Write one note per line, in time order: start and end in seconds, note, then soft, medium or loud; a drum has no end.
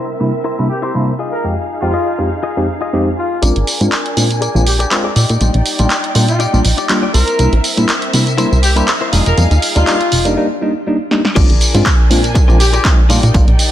0.00 1.17 C4 medium
0.00 1.17 A#4 medium
0.00 1.17 E5 medium
0.20 0.30 C3 medium
0.20 0.30 G3 medium
0.20 0.30 A#3 medium
0.20 0.30 D4 medium
0.20 0.30 E4 medium
0.20 muted clean electric guitar stroke soft
0.44 0.64 E4 medium
0.44 0.64 A#4 medium
0.44 0.64 C5 medium
0.58 0.67 C3 medium
0.58 0.67 G3 medium
0.58 0.67 A#3 medium
0.58 0.67 D4 medium
0.58 0.67 E4 medium
0.70 0.78 G4 medium
0.82 1.13 E4 medium
0.82 0.90 G4 medium
0.82 1.13 A#4 medium
0.82 1.14 C5 medium
0.94 1.09 C3 medium
0.94 1.09 G3 medium
0.94 1.10 A#3 medium
0.94 1.10 D4 medium
0.94 1.10 E4 medium
1.19 3.40 D#4 medium
1.19 1.79 F4 medium
1.19 1.80 G#4 medium
1.19 3.40 G#4 medium
1.19 1.80 D#5 medium
1.19 3.40 F5 medium
1.32 1.46 A#4 medium
1.44 1.54 F2 medium
1.44 1.54 G#3 medium
1.44 1.54 C4 medium
1.44 1.54 D#4 medium
1.44 1.54 G4 medium
1.82 1.90 F2 medium
1.82 1.90 G#3 medium
1.82 1.90 C4 medium
1.82 1.90 D#4 medium
1.82 2.32 F4 medium
1.82 1.91 G4 medium
1.93 2.07 F4 medium
1.93 2.07 G#4 medium
1.93 2.07 D#5 medium
2.18 2.28 F2 medium
2.18 2.28 G#3 medium
2.18 2.28 C4 medium
2.18 2.28 D#4 medium
2.18 2.28 G4 medium
2.18 muted clean electric guitar stroke soft
2.43 2.62 F4 medium
2.43 2.62 G#4 medium
2.43 2.62 D#5 medium
2.57 2.65 F2 medium
2.57 2.65 G#3 medium
2.57 2.65 C4 medium
2.57 2.65 D#4 medium
2.57 2.65 G4 medium
2.81 3.12 F4 medium
2.81 3.12 G#4 medium
2.81 3.12 D#5 medium
2.93 3.08 F2 medium
2.93 3.08 G#3 medium
2.93 3.08 C4 medium
2.93 3.08 D#4 medium
2.93 3.08 G4 loud
3.17 3.42 F4 medium
3.42 3.52 A#1 loud
3.42 3.52 G#3 medium
3.42 3.52 C4 medium
3.42 5.14 D4 medium
3.42 3.52 D4 medium
3.42 3.52 F4 medium
3.42 3.92 G#4 medium
3.42 5.14 A#4 medium
3.42 3.92 A#4 medium
3.42 3.92 D5 loud
3.42 5.14 G#5 medium
3.42 closed hi-hat medium
3.42 tambourine soft
3.56 3.64 G#1 medium
3.56 closed hi-hat soft
3.67 open hi-hat loud
3.67 tambourine medium
3.81 3.88 G#2 medium
3.81 3.89 G#3 medium
3.81 3.89 C4 medium
3.81 3.89 D4 medium
3.81 3.89 F4 medium
3.81 closed hi-hat soft
3.81 tambourine soft
3.92 clap loud
3.92 closed hi-hat medium
3.92 tambourine soft
4.06 closed hi-hat soft
4.17 4.48 A#2 medium
4.17 4.26 G#3 medium
4.17 4.26 C4 medium
4.17 4.27 D4 medium
4.17 4.27 F4 medium
4.17 open hi-hat loud
4.17 tambourine medium
4.31 closed hi-hat soft
4.31 tambourine soft
4.41 4.60 G#4 medium
4.41 4.61 A#4 medium
4.41 4.61 D5 medium
4.41 closed hi-hat medium
4.41 tambourine soft
4.54 4.85 A#1 medium
4.54 4.63 G#3 medium
4.54 4.63 C4 medium
4.54 4.63 D4 medium
4.54 4.63 F4 medium
4.54 tambourine soft
4.66 4.75 G4 medium
4.66 open hi-hat loud
4.66 tambourine medium
4.79 4.87 G4 medium
4.79 4.91 G#4 medium
4.79 4.91 A#4 medium
4.79 4.91 D5 medium
4.79 closed hi-hat soft
4.79 tambourine soft
4.91 5.06 G#3 medium
4.91 5.06 C4 medium
4.91 5.06 D4 medium
4.91 5.06 F4 loud
4.91 clap loud
4.91 closed hi-hat medium
4.91 tambourine soft
5.04 5.15 G#4 medium
5.04 5.15 A#4 medium
5.04 5.15 D5 medium
5.15 5.25 A#2 medium
5.15 5.95 D#4 medium
5.15 7.12 D#4 medium
5.15 5.95 G4 medium
5.15 5.96 D5 loud
5.15 7.12 D5 medium
5.15 7.12 G5 medium
5.15 open hi-hat medium
5.15 tambourine medium
5.29 5.37 A#2 medium
5.29 closed hi-hat medium
5.29 tambourine soft
5.40 5.50 A#1 loud
5.40 5.50 G3 medium
5.40 5.50 A#3 medium
5.40 5.50 D4 medium
5.40 5.51 F4 medium
5.40 closed hi-hat medium
5.40 tambourine soft
5.54 5.62 A#1 loud
5.54 closed hi-hat soft
5.66 open hi-hat loud
5.66 tambourine medium
5.79 5.87 A#1 medium
5.79 5.87 G3 medium
5.79 5.87 A#3 medium
5.79 5.87 D4 medium
5.79 5.87 F4 loud
5.79 closed hi-hat soft
5.79 tambourine soft
5.90 clap loud
5.90 closed hi-hat medium
5.90 tambourine soft
6.04 closed hi-hat soft
6.14 6.47 A#2 medium
6.14 6.24 G3 medium
6.14 6.24 A#3 medium
6.14 6.25 D4 medium
6.14 6.25 F4 medium
6.14 open hi-hat loud
6.14 tambourine medium
6.28 6.42 F4 medium
6.28 closed hi-hat soft
6.28 tambourine soft
6.39 6.59 D#4 loud
6.39 6.59 G4 medium
6.39 6.59 D5 loud
6.39 closed hi-hat medium
6.39 tambourine soft
6.53 6.61 A#1 medium
6.53 6.61 G3 medium
6.53 6.61 A#3 medium
6.53 6.61 D4 medium
6.53 6.62 F4 loud
6.53 tambourine soft
6.65 6.74 A#1 medium
6.65 open hi-hat loud
6.65 tambourine medium
6.77 6.89 D#4 medium
6.77 6.89 G4 medium
6.77 6.90 D5 loud
6.77 closed hi-hat medium
6.77 tambourine soft
6.89 7.04 G3 medium
6.89 7.04 A#3 medium
6.89 7.05 D4 medium
6.89 7.05 F4 loud
6.89 clap loud
6.89 closed hi-hat medium
6.89 tambourine soft
7.02 7.13 D#4 medium
7.02 7.14 G4 medium
7.02 7.14 D5 loud
7.14 7.23 C2 loud
7.14 9.11 C4 medium
7.14 7.94 E4 medium
7.14 7.64 A#4 medium
7.14 9.11 A#4 medium
7.14 7.94 A#4 medium
7.14 7.94 C5 loud
7.14 9.11 E5 medium
7.14 open hi-hat loud
7.14 tambourine medium
7.28 closed hi-hat medium
7.28 tambourine soft
7.39 7.48 C2 loud
7.39 7.49 G3 medium
7.39 7.49 A#3 medium
7.39 7.49 D4 medium
7.39 7.49 E4 medium
7.39 closed hi-hat medium
7.39 tambourine soft
7.52 7.60 A#1 loud
7.52 closed hi-hat soft
7.64 open hi-hat loud
7.64 tambourine medium
7.77 7.85 A#2 medium
7.77 7.85 G3 medium
7.77 7.85 A#3 medium
7.77 7.85 D4 medium
7.77 7.86 E4 medium
7.77 closed hi-hat soft
7.77 tambourine soft
7.89 clap loud
7.89 closed hi-hat medium
7.89 tambourine soft
8.02 closed hi-hat soft
8.13 8.45 C3 medium
8.13 8.23 G3 medium
8.13 8.23 A#3 medium
8.13 8.23 D4 medium
8.13 8.23 E4 medium
8.13 open hi-hat loud
8.13 tambourine medium
8.27 closed hi-hat soft
8.27 tambourine soft
8.38 8.47 G3 medium
8.38 8.48 A#3 medium
8.38 8.48 D4 medium
8.38 8.57 E4 loud
8.38 8.48 E4 medium
8.38 8.57 A#4 medium
8.38 8.57 C5 loud
8.38 closed hi-hat medium
8.38 tambourine soft
8.52 8.82 C2 medium
8.52 tambourine soft
8.63 8.72 G4 medium
8.63 open hi-hat loud
8.63 tambourine medium
8.76 8.84 G3 medium
8.76 8.84 A#3 medium
8.76 8.84 D4 medium
8.76 8.88 E4 medium
8.76 8.85 E4 medium
8.76 8.84 G4 medium
8.76 8.88 A#4 medium
8.76 8.88 C5 medium
8.76 closed hi-hat soft
8.76 tambourine soft
8.88 clap loud
8.88 closed hi-hat medium
8.88 tambourine soft
9.01 9.12 E4 loud
9.01 9.12 A#4 medium
9.01 9.13 C5 loud
9.12 9.22 F1 medium
9.12 9.22 G3 medium
9.12 9.22 A#3 medium
9.12 9.22 D4 medium
9.12 10.35 D#4 medium
9.12 9.22 D#4 medium
9.12 9.92 F4 loud
9.12 10.35 G#4 medium
9.12 9.92 G#4 medium
9.12 9.93 D#5 medium
9.12 10.35 F5 medium
9.12 open hi-hat loud
9.12 tambourine medium
9.26 9.34 F1 medium
9.26 9.40 A#4 medium
9.26 closed hi-hat medium
9.26 tambourine soft
9.37 9.47 F2 loud
9.37 9.47 G3 medium
9.37 9.47 A#3 medium
9.37 9.47 D4 medium
9.37 9.47 D#4 medium
9.37 closed hi-hat medium
9.37 tambourine soft
9.51 9.59 D#2 loud
9.51 closed hi-hat soft
9.51 tambourine soft
9.62 open hi-hat loud
9.62 tambourine medium
9.75 9.84 D#2 medium
9.75 9.84 G3 medium
9.75 9.84 A#3 medium
9.75 9.84 D4 medium
9.75 9.84 D#4 loud
9.75 10.25 F4 medium
9.75 closed hi-hat soft
9.75 tambourine soft
9.87 9.96 G3 medium
9.87 9.97 A#3 medium
9.87 9.97 D4 medium
9.87 9.97 D#4 medium
9.87 clap loud
9.87 closed hi-hat medium
9.87 tambourine soft
10.01 closed hi-hat soft
10.12 10.37 F1 medium
10.12 open hi-hat loud
10.12 tambourine medium
10.25 10.33 G3 medium
10.25 10.33 A#3 medium
10.25 10.33 D4 medium
10.25 10.34 D#4 loud
10.25 closed hi-hat soft
10.25 tambourine soft
10.36 10.46 G3 medium
10.36 10.46 A#3 medium
10.36 10.46 D4 medium
10.36 10.46 D#4 medium
10.61 10.71 G3 medium
10.61 10.71 A#3 medium
10.61 10.71 D4 medium
10.61 10.71 D#4 medium
10.86 10.96 G3 medium
10.86 10.96 A#3 medium
10.86 10.96 D4 medium
10.86 10.96 D#4 medium
11.11 11.21 G3 medium
11.11 11.21 A#3 medium
11.11 11.21 D4 medium
11.11 11.21 D#4 loud
11.11 snare medium
11.25 snare medium
11.35 11.45 A#1 loud
11.35 11.45 G#3 medium
11.35 11.46 C4 medium
11.35 13.08 D4 medium
11.35 11.46 D4 medium
11.35 11.85 F4 medium
11.35 11.46 F4 medium
11.35 11.85 G#4 medium
11.35 11.85 A#4 medium
11.35 13.08 A#4 medium
11.35 11.86 D5 loud
11.35 13.08 G#5 medium
11.35 kick loud
11.35 closed hi-hat medium
11.35 crash loud
11.35 tambourine soft
11.50 11.57 G#1 loud
11.50 closed hi-hat soft
11.61 open hi-hat loud
11.61 tambourine medium
11.74 11.82 G#2 medium
11.74 11.82 G#3 medium
11.74 11.82 C4 medium
11.74 11.82 D4 medium
11.74 11.83 F4 loud
11.74 closed hi-hat medium
11.74 tambourine soft
11.86 kick loud
11.86 clap loud
11.86 closed hi-hat medium
11.86 tambourine soft
12.10 12.42 A#2 medium
12.10 12.20 G#3 medium
12.10 12.20 C4 medium
12.10 12.20 D4 medium
12.10 12.20 F4 medium
12.10 open hi-hat loud
12.10 tambourine medium
12.24 closed hi-hat medium
12.24 tambourine soft
12.35 muted clean electric guitar stroke medium
12.35 kick loud
12.35 closed hi-hat medium
12.35 tambourine soft
12.48 12.79 A#1 loud
12.48 12.56 G#3 medium
12.48 12.56 C4 medium
12.48 12.56 D4 medium
12.48 12.60 F4 medium
12.48 12.57 F4 loud
12.48 12.60 G#4 medium
12.48 12.60 A#4 medium
12.48 12.60 D5 medium
12.48 tambourine soft
12.60 12.69 G4 medium
12.60 open hi-hat loud
12.60 tambourine medium
12.73 12.91 F4 medium
12.73 12.81 G4 medium
12.73 12.91 G#4 medium
12.73 12.91 A#4 medium
12.73 12.92 D5 medium
12.73 closed hi-hat medium
12.73 tambourine soft
12.84 12.99 G#3 medium
12.84 13.00 C4 medium
12.84 13.00 D4 medium
12.84 13.00 F4 medium
12.84 kick loud
12.84 clap loud
12.84 closed hi-hat medium
12.84 tambourine soft
13.09 13.19 A#2 medium
13.09 13.19 G3 medium
13.09 13.19 A#3 medium
13.09 13.19 D4 medium
13.09 13.72 D#4 loud
13.09 13.72 D#4 medium
13.09 13.19 F4 loud
13.09 13.72 G4 medium
13.09 13.72 A#4 medium
13.09 13.72 D5 medium
13.09 13.72 D5 loud
13.09 13.72 G5 medium
13.09 open hi-hat loud
13.09 tambourine medium
13.23 13.31 A#2 medium
13.23 closed hi-hat medium
13.23 tambourine soft
13.34 13.43 A#1 loud
13.34 13.44 G3 medium
13.34 13.44 A#3 medium
13.34 13.44 D4 medium
13.34 13.44 F4 medium
13.34 kick loud
13.34 closed hi-hat medium
13.34 tambourine soft
13.48 13.55 A#1 loud
13.48 closed hi-hat soft
13.59 open hi-hat loud
13.59 tambourine medium